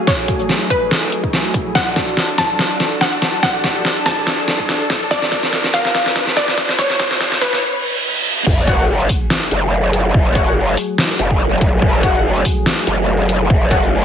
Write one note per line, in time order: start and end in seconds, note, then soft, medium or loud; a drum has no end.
0.00 7.59 F#3 medium
0.00 1.71 A3 medium
0.00 1.71 G#4 medium
0.00 riser medium
0.07 0.63 C#5 medium
0.07 kick loud
0.07 snare medium
0.28 kick loud
0.28 closed hi-hat medium
0.40 shaker soft
0.49 snare medium
0.61 shaker soft
0.70 1.68 B4 medium
0.70 kick medium
0.70 closed hi-hat medium
0.91 snare medium
1.12 closed hi-hat medium
1.24 kick medium
1.33 snare medium
1.45 closed hi-hat soft
1.54 kick loud
1.54 closed hi-hat medium
1.75 7.59 D4 medium
1.75 7.59 A4 medium
1.75 2.30 F#5 medium
1.75 kick loud
1.75 snare medium
1.96 kick loud
1.96 snare medium
1.96 closed hi-hat medium
2.08 shaker soft
2.17 snare medium
2.28 shaker medium
2.38 2.93 A5 medium
2.38 kick medium
2.38 snare medium
2.38 open hi-hat medium
2.59 snare medium
2.80 snare medium
2.80 closed hi-hat medium
3.01 3.35 F#5 medium
3.01 snare medium
3.12 closed hi-hat soft
3.22 snare medium
3.22 closed hi-hat medium
3.43 3.98 F#5 loud
3.43 kick loud
3.43 snare medium
3.64 kick loud
3.64 snare medium
3.64 closed hi-hat medium
3.75 shaker medium
3.85 snare medium
3.96 shaker medium
4.06 5.03 A5 medium
4.06 kick medium
4.06 snare medium
4.06 open hi-hat medium
4.27 snare medium
4.48 snare medium
4.48 closed hi-hat medium
4.59 kick medium
4.69 snare medium
4.80 closed hi-hat soft
4.90 kick loud
4.90 snare medium
4.90 closed hi-hat medium
5.11 5.66 D5 loud
5.11 kick loud
5.11 snare medium
5.22 snare medium
5.32 kick loud
5.32 snare medium
5.32 closed hi-hat medium
5.43 snare medium
5.43 shaker medium
5.53 snare medium
5.64 snare medium
5.64 shaker medium
5.74 6.29 F5 medium
5.74 kick medium
5.74 snare medium
5.74 open hi-hat loud
5.85 snare medium
5.95 snare loud
6.06 snare medium
6.16 snare loud
6.16 closed hi-hat medium
6.27 snare medium
6.37 6.70 D5 medium
6.37 snare loud
6.48 snare medium
6.48 closed hi-hat soft
6.58 snare loud
6.58 closed hi-hat medium
6.69 snare medium
6.79 7.34 C#5 loud
6.79 kick loud
6.79 snare loud
6.90 snare medium
7.00 kick loud
7.00 snare loud
7.00 closed hi-hat medium
7.11 snare medium
7.11 shaker medium
7.21 snare loud
7.32 snare medium
7.32 shaker medium
7.41 8.39 B4 loud
7.41 kick medium
7.41 snare loud
7.41 open hi-hat loud
7.53 snare medium
7.63 reverse cymbal medium
8.46 9.08 F#1 medium
8.46 14.05 F#3 medium
8.46 14.05 A3 medium
8.46 14.05 G#4 medium
8.46 kick loud
8.46 crash loud
8.46 sub drop medium
8.67 8.75 F#4 medium
8.67 8.75 C#5 medium
8.67 8.75 F#5 medium
8.67 kick loud
8.67 closed hi-hat medium
8.79 8.85 F#4 medium
8.79 8.85 C#5 medium
8.79 8.85 F#5 medium
8.79 shaker soft
9.00 shaker soft
9.09 kick medium
9.09 open hi-hat loud
9.30 snare loud
9.51 10.13 F#1 loud
9.51 closed hi-hat medium
9.93 closed hi-hat medium
10.14 10.76 F#1 medium
10.14 kick loud
10.35 10.42 F#4 medium
10.35 10.42 C#5 medium
10.35 10.42 F#5 medium
10.35 kick loud
10.35 closed hi-hat medium
10.47 10.53 F#4 medium
10.47 10.53 C#5 medium
10.47 10.53 F#5 medium
10.47 shaker medium
10.68 shaker soft
10.77 open hi-hat medium
10.98 snare loud
11.19 11.81 F#1 loud
11.19 closed hi-hat medium
11.31 kick medium
11.61 kick loud
11.61 closed hi-hat medium
11.82 12.44 F#1 medium
11.82 kick loud
12.03 12.10 F#4 medium
12.03 12.10 C#5 medium
12.03 12.10 F#5 medium
12.03 kick loud
12.03 closed hi-hat medium
12.14 12.21 F#4 medium
12.14 12.21 C#5 medium
12.14 12.21 F#5 medium
12.14 shaker medium
12.35 shaker medium
12.45 kick medium
12.45 open hi-hat loud
12.66 snare loud
12.87 13.49 F#1 loud
12.87 closed hi-hat medium
13.29 closed hi-hat medium
13.50 14.05 F#1 loud
13.50 kick loud
13.71 13.78 F#4 medium
13.71 13.78 C#5 medium
13.71 13.78 F#5 medium
13.71 kick loud
13.71 closed hi-hat medium
13.82 shaker soft